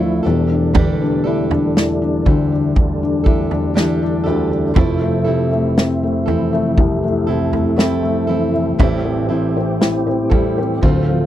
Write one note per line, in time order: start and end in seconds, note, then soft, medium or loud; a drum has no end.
0.00 0.21 D1 medium
0.00 0.21 A1 medium
0.00 0.21 D2 medium
0.00 0.26 A2 medium
0.00 0.21 D3 medium
0.00 0.22 F3 medium
0.00 0.27 F3 medium
0.00 0.23 A3 medium
0.00 0.24 A3 medium
0.00 0.25 D4 medium
0.00 0.21 E4 medium
0.00 0.24 E4 medium
0.00 0.22 A4 medium
0.23 4.23 E1 medium
0.23 4.73 E2 medium
0.23 4.23 E2 medium
0.23 4.72 G3 medium
0.23 8.75 A3 medium
0.23 4.72 D4 medium
0.23 0.74 D4 soft
0.23 0.74 G4 soft
0.23 0.74 A4 medium
0.51 1.00 D4 soft
0.74 2.26 D3 medium
0.74 1.25 E3 medium
0.74 1.25 G3 medium
0.74 1.25 D4 medium
0.74 1.24 G4 medium
0.74 1.23 A4 medium
0.74 kick loud
0.74 floor tom loud
1.02 1.49 D4 medium
1.24 2.27 D4 medium
1.24 3.23 E4 medium
1.24 2.26 G4 medium
1.24 2.25 A4 medium
1.51 2.00 D4 medium
1.51 floor tom medium
1.77 3.73 E3 medium
1.77 snare loud
2.02 2.51 D4 medium
2.26 4.25 D2 medium
2.26 2.76 D3 medium
2.26 3.26 D4 soft
2.26 3.25 G4 soft
2.26 3.23 A4 medium
2.26 kick medium
2.26 floor tom medium
2.52 3.01 D4 medium
2.76 4.25 D3 medium
2.76 kick medium
2.76 floor tom medium
3.03 3.51 D4 medium
3.24 3.74 D4 soft
3.24 4.72 E4 medium
3.24 3.75 G4 medium
3.24 3.75 A4 medium
3.24 kick medium
3.51 4.01 D4 medium
3.51 floor tom medium
3.74 4.74 E3 medium
3.74 4.25 G3 medium
3.74 4.26 D4 medium
3.74 4.25 G4 medium
3.74 4.22 A4 medium
3.74 snare loud
4.02 4.50 D4 medium
4.24 4.73 D2 medium
4.24 4.75 D3 medium
4.24 4.75 D4 soft
4.24 4.76 G4 medium
4.24 4.75 A4 medium
4.51 4.75 D4 medium
4.74 8.75 F1 medium
4.74 8.75 F2 medium
4.74 8.75 C3 medium
4.74 5.25 F3 medium
4.74 5.26 A3 medium
4.74 5.26 C4 medium
4.74 8.75 E4 medium
4.74 5.25 E4 medium
4.74 5.23 A4 medium
4.74 kick loud
4.74 floor tom loud
5.02 5.50 A3 medium
5.24 6.77 C3 medium
5.24 6.29 C4 soft
5.24 6.27 E4 medium
5.24 6.25 A4 medium
5.51 6.02 A3 medium
5.78 7.74 C4 medium
5.78 snare loud
6.03 6.51 A3 medium
6.26 8.25 E3 medium
6.26 7.30 C4 medium
6.26 7.28 E4 medium
6.26 7.27 A4 medium
6.26 floor tom medium
6.53 7.02 A3 medium
6.78 8.76 C2 medium
6.78 7.26 C3 medium
6.78 kick loud
6.78 floor tom medium
7.04 7.51 A3 medium
7.27 8.75 C3 medium
7.27 7.77 C4 soft
7.27 7.78 E4 medium
7.27 7.78 A4 medium
7.53 8.01 A3 medium
7.53 floor tom medium
7.76 8.28 A3 medium
7.76 8.76 C4 medium
7.76 8.28 C4 medium
7.76 8.28 E4 medium
7.76 8.26 A4 medium
7.76 snare loud
8.03 8.52 A3 medium
8.27 8.78 E3 medium
8.27 8.79 C4 medium
8.27 8.79 E4 medium
8.27 8.78 A4 medium
8.54 8.78 A3 soft
8.79 10.79 A1 medium
8.79 9.29 A2 medium
8.79 10.79 A2 medium
8.79 10.81 A2 medium
8.79 9.30 E3 medium
8.79 10.81 E3 medium
8.79 9.30 G3 medium
8.79 9.29 C4 medium
8.79 11.26 C4 medium
8.79 9.28 E4 medium
8.79 10.82 G4 medium
8.79 9.27 A4 loud
8.79 kick loud
8.79 floor tom loud
9.05 9.55 C4 medium
9.29 10.79 E3 medium
9.29 10.32 G3 soft
9.29 10.31 C4 medium
9.29 10.30 E4 medium
9.29 10.29 A4 medium
9.57 10.05 C4 medium
9.81 10.80 E4 medium
9.81 snare loud
10.07 10.57 C4 medium
10.30 10.82 G3 medium
10.30 10.82 G3 soft
10.30 10.82 C4 soft
10.30 10.82 E4 medium
10.30 10.82 A4 medium
10.30 kick medium
10.30 floor tom medium
10.58 10.82 C4 medium
10.81 11.26 D1 medium
10.81 11.26 D2 medium
10.81 11.26 D3 medium
10.81 11.26 A3 medium
10.81 11.26 C4 medium
10.81 11.26 F4 medium
10.81 11.26 A4 medium
10.81 kick medium
10.81 floor tom medium
11.10 11.26 F3 medium